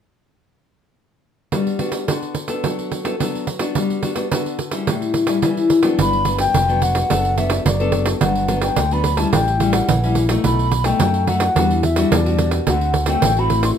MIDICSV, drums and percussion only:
0, 0, Header, 1, 2, 480
1, 0, Start_track
1, 0, Key_signature, 1, "major"
1, 0, Tempo, 557621
1, 1309, Time_signature, 4, 2, 24, 8
1, 11864, End_track
2, 0, Start_track
2, 0, Title_t, "Pandeiro"
2, 1309, Note_on_c, 9, 54, 66
2, 1395, Note_off_c, 9, 54, 0
2, 1435, Note_on_c, 9, 54, 28
2, 1521, Note_off_c, 9, 54, 0
2, 1541, Note_on_c, 9, 54, 51
2, 1627, Note_off_c, 9, 54, 0
2, 1650, Note_on_c, 9, 54, 54
2, 1737, Note_off_c, 9, 54, 0
2, 1792, Note_on_c, 9, 54, 70
2, 1878, Note_off_c, 9, 54, 0
2, 1915, Note_on_c, 9, 54, 27
2, 2001, Note_off_c, 9, 54, 0
2, 2019, Note_on_c, 9, 54, 48
2, 2105, Note_off_c, 9, 54, 0
2, 2134, Note_on_c, 9, 54, 57
2, 2220, Note_off_c, 9, 54, 0
2, 2270, Note_on_c, 9, 54, 67
2, 2356, Note_off_c, 9, 54, 0
2, 2399, Note_on_c, 9, 54, 30
2, 2485, Note_off_c, 9, 54, 0
2, 2510, Note_on_c, 9, 54, 45
2, 2596, Note_off_c, 9, 54, 0
2, 2625, Note_on_c, 9, 54, 61
2, 2712, Note_off_c, 9, 54, 0
2, 2758, Note_on_c, 9, 54, 65
2, 2844, Note_off_c, 9, 54, 0
2, 2887, Note_on_c, 9, 54, 29
2, 2973, Note_off_c, 9, 54, 0
2, 2988, Note_on_c, 9, 54, 52
2, 3074, Note_off_c, 9, 54, 0
2, 3094, Note_on_c, 9, 54, 59
2, 3180, Note_off_c, 9, 54, 0
2, 3230, Note_on_c, 9, 54, 69
2, 3316, Note_off_c, 9, 54, 0
2, 3359, Note_on_c, 9, 54, 29
2, 3445, Note_off_c, 9, 54, 0
2, 3466, Note_on_c, 9, 54, 53
2, 3552, Note_off_c, 9, 54, 0
2, 3578, Note_on_c, 9, 54, 55
2, 3664, Note_off_c, 9, 54, 0
2, 3715, Note_on_c, 9, 54, 73
2, 3801, Note_off_c, 9, 54, 0
2, 3840, Note_on_c, 9, 54, 28
2, 3926, Note_off_c, 9, 54, 0
2, 3949, Note_on_c, 9, 54, 48
2, 4035, Note_off_c, 9, 54, 0
2, 4058, Note_on_c, 9, 54, 59
2, 4144, Note_off_c, 9, 54, 0
2, 4194, Note_on_c, 9, 54, 72
2, 4280, Note_off_c, 9, 54, 0
2, 4321, Note_on_c, 9, 54, 32
2, 4407, Note_off_c, 9, 54, 0
2, 4423, Note_on_c, 9, 54, 53
2, 4509, Note_off_c, 9, 54, 0
2, 4535, Note_on_c, 9, 54, 62
2, 4621, Note_off_c, 9, 54, 0
2, 4669, Note_on_c, 9, 54, 70
2, 4755, Note_off_c, 9, 54, 0
2, 4797, Note_on_c, 9, 54, 28
2, 4883, Note_off_c, 9, 54, 0
2, 4906, Note_on_c, 9, 54, 55
2, 4992, Note_off_c, 9, 54, 0
2, 5015, Note_on_c, 9, 54, 63
2, 5102, Note_off_c, 9, 54, 0
2, 5153, Note_on_c, 9, 54, 72
2, 5239, Note_off_c, 9, 54, 0
2, 5278, Note_on_c, 9, 54, 30
2, 5364, Note_off_c, 9, 54, 0
2, 5380, Note_on_c, 9, 54, 55
2, 5466, Note_off_c, 9, 54, 0
2, 5496, Note_on_c, 9, 54, 58
2, 5583, Note_off_c, 9, 54, 0
2, 5633, Note_on_c, 9, 54, 77
2, 5719, Note_off_c, 9, 54, 0
2, 5762, Note_on_c, 9, 54, 29
2, 5848, Note_off_c, 9, 54, 0
2, 5869, Note_on_c, 9, 54, 55
2, 5955, Note_off_c, 9, 54, 0
2, 5982, Note_on_c, 9, 54, 62
2, 6068, Note_off_c, 9, 54, 0
2, 6113, Note_on_c, 9, 54, 75
2, 6199, Note_off_c, 9, 54, 0
2, 6239, Note_on_c, 9, 54, 34
2, 6325, Note_off_c, 9, 54, 0
2, 6349, Note_on_c, 9, 54, 52
2, 6435, Note_off_c, 9, 54, 0
2, 6453, Note_on_c, 9, 54, 66
2, 6539, Note_off_c, 9, 54, 0
2, 6591, Note_on_c, 9, 54, 79
2, 6677, Note_off_c, 9, 54, 0
2, 6714, Note_on_c, 9, 54, 32
2, 6800, Note_off_c, 9, 54, 0
2, 6817, Note_on_c, 9, 54, 57
2, 6903, Note_off_c, 9, 54, 0
2, 6935, Note_on_c, 9, 54, 64
2, 7021, Note_off_c, 9, 54, 0
2, 7066, Note_on_c, 9, 54, 74
2, 7152, Note_off_c, 9, 54, 0
2, 7191, Note_on_c, 9, 54, 33
2, 7277, Note_off_c, 9, 54, 0
2, 7303, Note_on_c, 9, 54, 58
2, 7389, Note_off_c, 9, 54, 0
2, 7416, Note_on_c, 9, 54, 64
2, 7502, Note_off_c, 9, 54, 0
2, 7544, Note_on_c, 9, 54, 78
2, 7630, Note_off_c, 9, 54, 0
2, 7672, Note_on_c, 9, 54, 30
2, 7758, Note_off_c, 9, 54, 0
2, 7780, Note_on_c, 9, 54, 57
2, 7866, Note_off_c, 9, 54, 0
2, 7895, Note_on_c, 9, 54, 63
2, 7982, Note_off_c, 9, 54, 0
2, 8029, Note_on_c, 9, 54, 77
2, 8115, Note_off_c, 9, 54, 0
2, 8158, Note_on_c, 9, 54, 35
2, 8244, Note_off_c, 9, 54, 0
2, 8265, Note_on_c, 9, 54, 58
2, 8351, Note_off_c, 9, 54, 0
2, 8375, Note_on_c, 9, 54, 68
2, 8461, Note_off_c, 9, 54, 0
2, 8510, Note_on_c, 9, 54, 79
2, 8596, Note_off_c, 9, 54, 0
2, 8639, Note_on_c, 9, 54, 30
2, 8725, Note_off_c, 9, 54, 0
2, 8738, Note_on_c, 9, 54, 58
2, 8825, Note_off_c, 9, 54, 0
2, 8857, Note_on_c, 9, 54, 65
2, 8943, Note_off_c, 9, 54, 0
2, 8986, Note_on_c, 9, 54, 69
2, 9072, Note_off_c, 9, 54, 0
2, 9118, Note_on_c, 9, 54, 30
2, 9204, Note_off_c, 9, 54, 0
2, 9224, Note_on_c, 9, 54, 57
2, 9310, Note_off_c, 9, 54, 0
2, 9334, Note_on_c, 9, 54, 61
2, 9420, Note_off_c, 9, 54, 0
2, 9465, Note_on_c, 9, 54, 78
2, 9551, Note_off_c, 9, 54, 0
2, 9587, Note_on_c, 9, 54, 31
2, 9673, Note_off_c, 9, 54, 0
2, 9704, Note_on_c, 9, 54, 53
2, 9791, Note_off_c, 9, 54, 0
2, 9814, Note_on_c, 9, 54, 64
2, 9900, Note_off_c, 9, 54, 0
2, 9951, Note_on_c, 9, 54, 75
2, 10037, Note_off_c, 9, 54, 0
2, 10076, Note_on_c, 9, 54, 33
2, 10162, Note_off_c, 9, 54, 0
2, 10185, Note_on_c, 9, 54, 57
2, 10271, Note_off_c, 9, 54, 0
2, 10297, Note_on_c, 9, 54, 63
2, 10383, Note_off_c, 9, 54, 0
2, 10431, Note_on_c, 9, 54, 83
2, 10517, Note_off_c, 9, 54, 0
2, 10555, Note_on_c, 9, 54, 34
2, 10641, Note_off_c, 9, 54, 0
2, 10661, Note_on_c, 9, 54, 57
2, 10747, Note_off_c, 9, 54, 0
2, 10772, Note_on_c, 9, 54, 64
2, 10858, Note_off_c, 9, 54, 0
2, 10904, Note_on_c, 9, 54, 76
2, 10990, Note_off_c, 9, 54, 0
2, 11028, Note_on_c, 9, 54, 29
2, 11115, Note_off_c, 9, 54, 0
2, 11136, Note_on_c, 9, 54, 56
2, 11222, Note_off_c, 9, 54, 0
2, 11243, Note_on_c, 9, 54, 66
2, 11329, Note_off_c, 9, 54, 0
2, 11380, Note_on_c, 9, 54, 79
2, 11467, Note_off_c, 9, 54, 0
2, 11506, Note_on_c, 9, 54, 29
2, 11592, Note_off_c, 9, 54, 0
2, 11619, Note_on_c, 9, 54, 54
2, 11705, Note_off_c, 9, 54, 0
2, 11732, Note_on_c, 9, 54, 62
2, 11818, Note_off_c, 9, 54, 0
2, 11864, End_track
0, 0, End_of_file